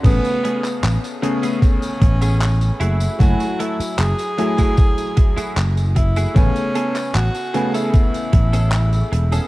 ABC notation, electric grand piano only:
X:1
M:4/4
L:1/8
Q:1/4=76
K:A
V:1 name="Electric grand piano"
[C,A,B,G]3 [C,A,B,G]2 z3 | [F,A,Eg]3 [F,A,Eg]2 z3 | [C,A,B,g]3 [C,A,B,g]2 z3 |]